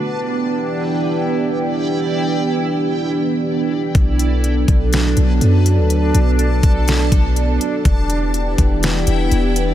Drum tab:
HH |--------|--------|xxxxxxxx|xxxxxxxx|
SD |--------|--------|----o---|----o---|
BD |--------|--------|o--o----|---o-o--|

HH |xxxxxxxx|
SD |----o---|
BD |o--o----|